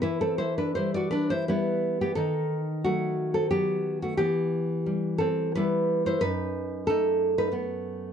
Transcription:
\new Staff \with { instrumentName = "Nylon-string guitar" } { \time 3/4 \key e \minor \tempo 4 = 90 << { <e' b'>16 <c' a'>16 <e' c''>16 <d' b'>16 <e' c''>16 <fis' d''>16 <d' b'>16 <e' c''>16 <e' b'>8. <b g'>16 | <dis' a'>4 <a fis'>8. <c' a'>16 <b g'>8. <a fis'>16 | <b g'>4. <c' a'>8 <e' b'>8. <e' c''>16 | <dis' b'>4 <dis' a'>8. <dis' b'>16 r4 | } \\ { e4 g4 <g b>4 | dis4 fis4 fis4 | e4 g4 <g b>4 | fis,4 a4 <a b>4 | } >> }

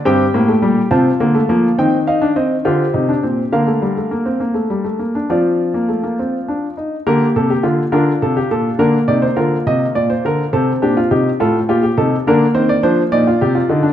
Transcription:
<<
  \new Staff \with { instrumentName = "Grand piano" } { \time 12/8 \key bes \major \tempo 4. = 69 << { g''4. a''4. g''8 f''8 ees''8 c''4. | f''2. d''2~ d''8 r8 | bes'8 a'16 g'16 f'8 bes'8 a'16 g'16 a'8 bes'8 d''16 c''16 bes'8 ees''8 d''16 c''16 bes'8 | a'8 g'16 f'16 g'8 a'8 f'16 g'16 a'8 bes'8 c''16 d''16 c''8 d''4. | } \\ { g'4. f'4. ees'4. g'4. | bes'2. f'2~ f'8 r8 | g'4. f'4. d'8 ees'8 f'2 | c'8 d'8 ees'8 f'8 g'8 ees'8 d'8 c'8 d'8 ees'16 f'16 g'16 f'16 ees'16 d'16 | } >> }
  \new Staff \with { instrumentName = "Grand piano" } { \clef bass \time 12/8 \key bes \major << { c'8 bes16 a16 g8 c'8 bes16 a16 bes8 c'8 ees'16 d'16 c'8 f'8 ees'16 d'16 c'8 | bes16 a16 g16 a16 bes16 c'16 bes16 a16 g16 a16 bes16 d'16 c'8. bes16 a16 bes16 c'8 d'8 ees'8 | bes4. d'4. bes2. | r2. bes2. | } \\ { g,8 a,8 bes,8 c8 d8 f8 ees4. d8 c8 bes,8 | d2. f2~ f8 r8 | d8 c8 d8 d8 c8 bes,8 d8 c8 d8 c8 bes,8 d8 | c8 bes,8 c8 a,8 bes,8 c8 d8 ees8 f8 bes,8 c8 d8 | } >> }
>>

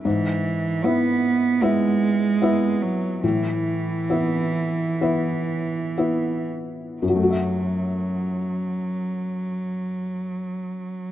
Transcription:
<<
  \new Staff \with { instrumentName = "Felt piano" } { \time 4/4 \key fis \minor \tempo 4 = 64 gis,4 <b e' e''>4 <b e' e''>4 <b e' e''>4 | a,4 <b e' e''>4 <b e' e''>4 <b e' e''>4 | <fis, fis a fis' e'' fis''>1 | }
  \new Staff \with { instrumentName = "Cello" } { \clef bass \time 4/4 \key fis \minor e4 b4 gis4. fis8 | e2.~ e8 r8 | fis1 | }
>>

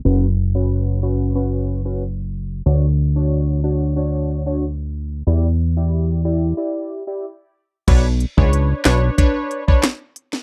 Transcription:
<<
  \new Staff \with { instrumentName = "Synth stab" } { \time 4/4 \key b \minor \tempo 4 = 92 <cis' fis' b'>16 r8 <cis' fis' b'>8. <cis' fis' b'>8 <cis' fis' b'>8. <cis' fis' b'>16 r4 | <d' fis' cis''>16 r8 <d' fis' cis''>8. <d' fis' cis''>8 <d' fis' cis''>8. <d' fis' cis''>16 r4 | <e' g' d''>16 r8 <e' g' d''>8. <e' g' d''>8 <e' g' d''>8. <e' g' d''>16 r4 | <d' b' cis''>16 r8 <d' b' cis''>8. <d' b' cis''>8 <d' b' cis''>8. <d' b' cis''>16 r4 | }
  \new Staff \with { instrumentName = "Analog synth bass" } { \clef bass \time 4/4 \key b \minor fis,,1 | d,1 | e,2 r2 | b,,8. cis,8. b,,8 r2 | }
  \new DrumStaff \with { instrumentName = "Drums" } \drummode { \time 4/4 r4 r4 r4 r4 | r4 r4 r4 r4 | r4 r4 r4 r4 | <cymc hh bd>8 hh16 bd16 hh8 <hc hh sn>8 <hh bd>8 hh16 bd16 <hc hh sn>8 hh16 sn16 | }
>>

